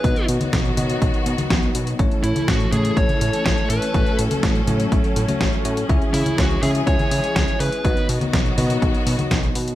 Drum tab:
HH |xxxxxxxxxxxxxxxx|xxxxxxxxxxxxxxxx|xxxxxxxxxxxxxxxx|xxoxxxoxxxoxxxox|
SD |----o-------o---|----o-------o---|----o-------o---|----o-------o---|
CG |---o--o----o----|---o--o--o------|---o--o----o----|---o--o--o------|
BD |o---o---o---o---|o---o---o---o---|o---o---o---o---|o---o---o---o---|

HH |xxoxxxoxxxoxxxox|
SD |----o-------o---|
CG |---o--o----o----|
BD |o---o---o---o---|